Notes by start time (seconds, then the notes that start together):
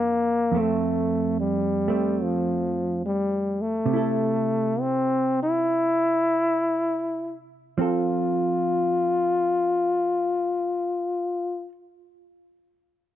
Already playing: F2 E3 A#3 C4
0.52 F2 A3
0.56 A3 C4
1.40 G3
1.88 A3 C4
2.23 F3
3.06 G3
3.62 A3
3.86 C3
3.93 E4 A4
4.80 C4
5.43 E4
7.78 F3 C4 F4 A4